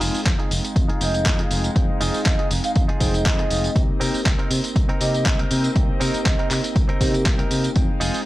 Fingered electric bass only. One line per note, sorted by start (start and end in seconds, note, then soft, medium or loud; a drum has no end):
0.01 0.10 F1 medium
0.15 muted fingered electric bass stroke soft
0.26 0.34 F2 medium
0.51 0.59 F1 medium
0.76 0.89 F2 medium
0.90 muted fingered electric bass stroke soft
1.01 1.27 F1 medium
1.26 1.42 F2 medium
1.51 1.68 F1 medium
1.76 1.89 F2 medium
1.90 muted fingered electric bass stroke soft
2.01 2.10 F1 medium
2.26 2.34 F2 medium
2.51 2.60 F1 medium
2.76 2.88 F2 medium
2.89 muted fingered electric bass stroke soft
3.01 3.27 F1 medium
3.26 3.42 F2 medium
3.51 3.67 F1 medium
3.76 3.89 C2 loud
3.89 muted fingered electric bass stroke soft
4.01 4.09 C3 medium
4.14 muted fingered electric bass stroke soft
4.26 4.34 C2 medium
4.51 4.59 C3 medium
4.76 4.89 C2 medium
4.89 muted fingered electric bass stroke soft
5.01 5.27 C3 medium
5.26 5.42 C2 loud
5.51 5.68 C3 loud
5.76 5.89 C2 medium
5.89 muted fingered electric bass stroke soft
6.01 6.09 C3 medium
6.14 muted fingered electric bass stroke soft
6.26 6.34 C2 medium
6.51 6.59 C3 medium
6.76 6.89 C2 medium
6.89 muted fingered electric bass stroke soft
7.01 7.27 C3 medium
7.26 7.42 C2 medium
7.51 7.67 C3 medium
7.76 7.89 F2 medium
7.89 muted fingered electric bass stroke soft
8.01 8.09 F1 medium